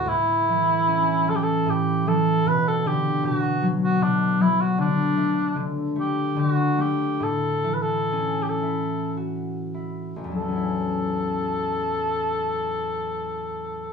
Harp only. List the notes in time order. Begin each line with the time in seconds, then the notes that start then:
Already playing: D1 D2 A3
0.06 A2
0.49 E3
0.88 C#4
1.27 E3
1.66 A2
2.06 E3
2.46 B2
2.85 D3
3.23 B2
3.62 F#3
4.01 B2
4.40 F#3
4.78 D3
5.17 A3
5.55 D3
5.96 A3
6.36 D3
6.78 A3
7.20 A2
7.64 E3
8.12 C#4
8.63 E4
9.17 F#4
9.74 E4
10.16 A1
10.24 E2
10.32 F#3
10.40 A3
10.48 C#4
10.56 E4